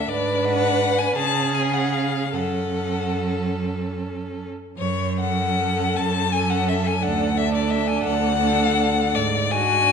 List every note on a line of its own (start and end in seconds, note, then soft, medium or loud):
0.00 0.10 E5 medium
0.08 1.12 G#2 medium
0.08 1.12 D4 medium
0.08 1.17 B4 medium
0.08 0.46 D5 medium
0.44 1.00 F#5 loud
0.98 1.15 G#5 loud
1.16 2.34 C#3 medium
1.16 2.30 C#4 medium
1.16 2.33 G#4 medium
1.16 1.56 A5 loud
1.54 1.75 G#5 medium
1.74 1.95 F#5 medium
1.94 2.36 F5 medium
2.33 4.52 F#2 medium
2.33 4.48 C#4 medium
2.33 4.48 A4 medium
2.33 3.51 F#5 medium
4.77 5.82 F#2 medium
4.77 5.17 C#5 medium
5.19 6.29 C#4 medium
5.19 6.29 A4 medium
5.19 5.98 F#5 loud
5.96 6.90 F#2 medium
5.96 6.33 A5 loud
6.32 7.01 C#4 medium
6.32 7.01 A4 medium
6.32 6.51 G#5 loud
6.50 6.70 F#5 medium
6.68 6.88 E5 medium
6.87 7.04 G#5 medium
7.02 7.92 D2 medium
7.02 7.36 D4 medium
7.02 7.36 A4 medium
7.02 7.39 F#5 medium
7.37 8.37 D4 medium
7.37 8.36 A4 medium
7.37 7.54 E5 loud
7.54 7.72 D5 medium
7.71 7.89 E5 medium
7.87 8.03 G#5 loud
8.04 8.99 D2 medium
8.04 9.16 F#5 loud
8.39 9.12 D4 medium
8.39 9.12 A4 medium
9.13 9.92 G#2 medium
9.13 9.53 D5 loud
9.51 9.92 D4 medium
9.51 9.92 F#4 medium
9.51 9.92 G#5 loud